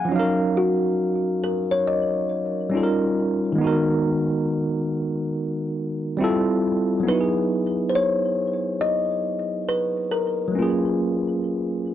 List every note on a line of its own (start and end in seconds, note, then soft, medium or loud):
0.00 0.11 G#4 medium
0.00 0.13 F5 medium
0.00 0.13 F#5 medium
0.00 0.12 G#5 medium
0.05 0.16 F3 medium
0.05 2.67 C#4 medium
0.12 2.68 F#3 medium
0.12 2.68 D#4 medium
0.16 2.72 A#4 medium
0.16 2.70 F5 medium
0.57 1.45 F#4 medium
1.44 1.71 A#4 medium
1.71 1.86 C#5 medium
1.87 6.17 D#5 medium
2.70 3.58 G3 medium
2.70 3.59 C#4 medium
2.70 3.60 D#4 medium
2.75 3.60 F4 medium
2.75 2.83 A4 medium
2.83 3.64 A#4 medium
3.52 6.13 D#3 medium
3.52 6.14 G#3 medium
3.58 6.15 B3 medium
3.58 6.17 D#4 medium
3.64 6.18 F#4 medium
3.64 6.20 A#4 medium
6.17 7.05 G3 medium
6.17 7.06 C4 medium
6.17 7.07 E4 medium
6.22 7.08 F4 medium
6.22 7.09 A4 medium
7.00 10.47 F#3 medium
7.00 10.49 B3 medium
7.07 10.51 D#4 medium
7.07 10.52 E4 medium
7.07 7.92 B4 medium
7.14 7.19 F#4 medium
7.21 10.57 G#4 medium
7.89 7.94 C5 medium
7.95 8.84 C#5 medium
8.81 9.70 D#5 loud
9.69 10.13 B4 medium
10.11 11.94 A#4 medium
10.48 11.94 F#3 medium
10.48 10.61 A3 soft
10.55 11.94 A#3 medium
10.55 11.94 C#4 medium
10.55 11.94 F4 medium
10.62 11.94 G#4 medium